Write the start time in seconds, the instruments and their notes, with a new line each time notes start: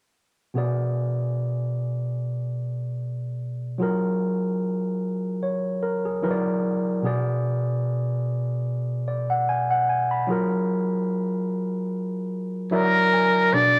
0.54 tine electric piano B2 B3 G#4
0.58 tine electric piano D5
3.78 tine electric piano F#3 F4 G#4
3.83 tine electric piano A#4
5.43 tine electric piano C#5
5.83 tine electric piano A#4
6.05 tine electric piano G#4
6.23 tine electric piano F#3 E4 A#4 B4
6.31 tine electric piano D5
7.03 tine electric piano B2 B3 G#4 D5
9.08 tine electric piano D5
9.30 tine electric piano F#5
9.49 tine electric piano G#5
9.71 tine electric piano F#5
9.89 tine electric piano G#5
10.11 tine electric piano B5
10.27 tine electric piano F#3 F4 G#4
10.31 tine electric piano A#4
12.71 tine electric piano F#3 E4 A#4 D5 E5, muted trumpet A#4
13.13 tine electric piano G#5
13.53 tine electric piano B2 B3 D4 G#4, muted trumpet D5